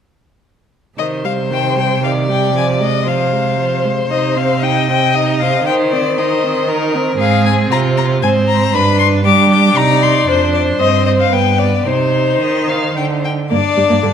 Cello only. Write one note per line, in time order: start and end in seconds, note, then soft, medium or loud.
0.98 4.07 C3 soft
4.10 5.63 C3 soft
5.66 7.16 D#3 soft
7.19 7.67 G#2 medium
7.70 8.23 C3 medium
8.22 8.73 G#2 medium
8.73 9.27 G2 soft
9.25 9.76 G3 medium
9.76 10.27 C3 soft
10.28 10.78 F2 medium
10.79 11.30 G2 soft
11.31 11.84 G2 soft
11.85 12.40 C3 soft
12.41 12.95 D#3 soft
12.96 13.50 D3 soft
13.51 13.57 G2 medium
13.77 13.83 G2 soft
13.90 13.96 G2 medium
14.04 14.09 G2 soft